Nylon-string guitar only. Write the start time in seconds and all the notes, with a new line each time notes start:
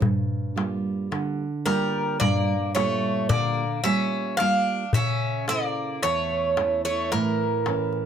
0.00 G2
0.56 G3 A#3 F4
1.12 D3
1.66 G3 A#3 F4
2.21 G2
2.76 A#2 G3 F4
3.31 D3
3.84 G3 A#3 F4
4.40 G3 A#3 F4
4.94 C#3
5.48 E4 A4
6.04 E2
6.58 E3 C#4 E4
7.13 A2
7.67 E3 C#4 E4